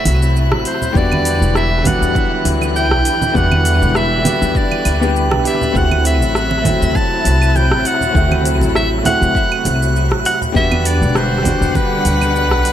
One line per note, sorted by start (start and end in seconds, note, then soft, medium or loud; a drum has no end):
0.00 0.91 C3 medium
0.00 0.91 F#3 medium
0.00 0.96 A3 medium
0.00 0.96 C4 medium
0.00 0.91 E4 loud
0.00 0.96 E4 medium
0.00 0.96 F#4 medium
0.00 0.35 E5 loud
0.00 12.73 F#6 medium
0.05 0.52 C2 medium
0.05 open hi-hat medium
0.05 muted conga medium
0.05 shaker medium
0.23 shaker soft
0.36 shaker soft
0.52 0.63 A1 medium
0.52 cross-stick medium
0.52 muted conga soft
0.65 0.98 C5 medium
0.65 open hi-hat medium
0.65 shaker medium
0.82 low conga medium
0.82 shaker soft
0.92 1.43 E2 loud
0.92 5.71 D3 medium
0.92 5.71 E3 medium
0.92 1.81 G3 medium
0.92 1.81 B3 medium
0.92 5.71 E4 medium
0.92 kick loud
0.92 shaker soft
0.96 1.82 D4 medium
0.96 1.83 F#4 medium
0.96 1.56 D5 loud
1.12 muted conga medium
1.12 high conga medium
1.12 claves medium
1.25 open hi-hat medium
1.25 shaker medium
1.42 1.81 E1 medium
1.42 shaker soft
1.55 1.88 E5 loud
1.55 cross-stick medium
1.55 muted conga medium
1.55 shaker soft
1.82 3.30 G3 medium
1.82 3.31 B3 medium
1.82 kick medium
1.82 open hi-hat medium
1.82 high conga loud
1.86 3.33 F#3 loud
1.86 3.32 D4 medium
1.86 2.46 F#5 loud
1.86 low conga loud
1.86 shaker medium
2.02 2.13 E2 medium
2.02 shaker soft
2.15 kick loud
2.15 muted conga medium
2.15 shaker soft
2.45 2.92 D2 medium
2.45 open hi-hat medium
2.45 shaker medium
2.61 muted conga medium
2.61 claves medium
2.61 shaker soft
2.76 3.38 G5 loud
2.76 shaker soft
2.91 3.03 B1 medium
2.91 cross-stick medium
3.05 open hi-hat medium
3.05 shaker medium
3.21 muted conga medium
3.21 low conga medium
3.21 shaker soft
3.32 3.83 E2 medium
3.32 4.20 G3 medium
3.32 4.21 B3 medium
3.32 kick loud
3.36 4.22 D4 medium
3.36 4.23 F#4 medium
3.36 3.98 F#5 loud
3.36 shaker soft
3.51 high conga loud
3.51 claves medium
3.65 open hi-hat medium
3.65 muted conga soft
3.65 shaker medium
3.82 4.21 E1 medium
3.82 shaker soft
3.95 4.59 E5 loud
3.95 cross-stick medium
3.95 shaker soft
4.22 4.97 G3 medium
4.22 4.98 B3 medium
4.22 4.99 D4 medium
4.22 open hi-hat medium
4.22 high conga medium
4.22 low conga medium
4.22 shaker medium
4.27 5.00 F#4 medium
4.27 muted conga medium
4.42 4.53 E2 medium
4.42 shaker soft
4.55 5.16 D5 medium
4.55 kick loud
4.55 shaker soft
4.71 muted conga soft
4.71 claves medium
4.85 5.32 D2 medium
4.85 open hi-hat medium
4.85 claves medium
4.85 shaker medium
5.00 5.41 G3 medium
5.00 5.42 B3 medium
5.00 5.42 D4 medium
5.00 5.43 G4 medium
5.00 shaker soft
5.16 shaker soft
5.31 5.42 B1 medium
5.31 cross-stick medium
5.31 muted conga medium
5.44 5.71 G3 medium
5.44 5.72 B3 medium
5.44 5.72 D4 medium
5.44 5.73 G4 medium
5.44 5.79 E5 medium
5.44 open hi-hat medium
5.44 shaker medium
5.61 low conga medium
5.61 shaker soft
5.72 6.21 D2 loud
5.72 10.51 C3 medium
5.72 10.51 F#3 medium
5.72 6.60 A3 medium
5.72 6.61 C4 medium
5.72 10.51 E4 medium
5.72 kick loud
5.72 shaker soft
5.76 6.62 E4 medium
5.76 6.63 F#4 loud
5.76 6.06 F#5 loud
5.91 muted conga medium
5.91 high conga medium
5.91 claves medium
6.05 6.98 E5 medium
6.05 open hi-hat medium
6.05 shaker medium
6.21 6.61 A1 medium
6.21 shaker soft
6.35 cross-stick medium
6.35 shaker soft
6.51 muted conga medium
6.62 8.10 A3 medium
6.62 8.11 C4 medium
6.62 kick medium
6.62 open hi-hat medium
6.62 high conga loud
6.62 low conga medium
6.66 8.13 F#3 loud
6.66 8.12 E4 medium
6.66 shaker medium
6.82 6.92 D2 medium
6.82 shaker soft
6.95 7.58 A5 loud
6.95 kick loud
6.95 muted conga medium
6.95 shaker soft
7.25 7.71 C2 medium
7.25 open hi-hat medium
7.25 shaker medium
7.42 claves medium
7.42 shaker soft
7.56 7.88 G5 loud
7.56 muted conga medium
7.56 shaker soft
7.71 7.82 A1 medium
7.71 cross-stick medium
7.85 8.46 F#5 loud
7.85 open hi-hat medium
7.85 shaker medium
8.01 muted conga soft
8.01 low conga medium
8.01 shaker soft
8.12 8.62 D2 loud
8.12 9.00 A3 medium
8.12 9.01 C4 medium
8.12 9.02 E4 medium
8.12 kick loud
8.16 9.03 F#4 medium
8.16 shaker soft
8.31 high conga medium
8.31 claves medium
8.45 open hi-hat medium
8.45 shaker medium
8.61 9.01 A1 medium
8.61 muted conga medium
8.61 shaker soft
8.75 8.90 E5 loud
8.75 cross-stick medium
8.75 shaker soft
9.02 10.50 A3 medium
9.02 10.51 C4 medium
9.02 open hi-hat medium
9.02 muted conga medium
9.02 high conga medium
9.02 low conga medium
9.06 10.52 E4 medium
9.06 10.53 F#4 medium
9.06 9.92 F#5 loud
9.06 shaker medium
9.21 9.32 D2 medium
9.21 shaker soft
9.35 kick loud
9.35 shaker soft
9.52 claves medium
9.65 10.11 C2 medium
9.65 open hi-hat medium
9.65 muted conga medium
9.65 shaker medium
9.83 shaker soft
9.96 shaker soft
10.11 10.22 A1 medium
10.11 cross-stick medium
10.11 muted conga soft
10.25 10.40 F#5 loud
10.25 open hi-hat medium
10.25 shaker medium
10.42 low conga medium
10.42 shaker soft
10.52 11.03 E2 loud
10.52 12.73 D3 medium
10.52 11.40 G3 medium
10.52 12.73 G3 medium
10.52 11.41 B3 medium
10.52 12.73 F#5 medium
10.52 kick loud
10.56 11.43 D4 medium
10.56 11.43 F#4 medium
10.56 10.88 E5 loud
10.56 shaker soft
10.71 muted conga medium
10.71 high conga medium
10.71 claves medium
10.85 11.18 D5 loud
10.85 open hi-hat loud
10.85 shaker medium
11.02 11.41 E1 medium
11.02 shaker soft
11.15 11.78 C5 loud
11.15 cross-stick medium
11.15 muted conga soft
11.15 shaker soft
11.42 12.73 B2 medium
11.42 12.73 G3 medium
11.42 kick medium
11.42 open hi-hat medium
11.42 high conga medium
11.42 low conga medium
11.46 12.73 D4 medium
11.46 12.73 F#4 loud
11.46 shaker medium
11.61 11.72 E2 medium
11.61 shaker soft
11.75 12.73 B4 loud
11.75 kick loud
11.75 muted conga medium
11.75 shaker soft
12.05 12.52 D2 medium
12.05 open hi-hat medium
12.05 shaker medium
12.21 muted conga medium
12.21 claves medium
12.21 shaker soft
12.36 shaker soft
12.51 12.62 B1 loud
12.51 cross-stick medium
12.65 open hi-hat medium
12.65 shaker medium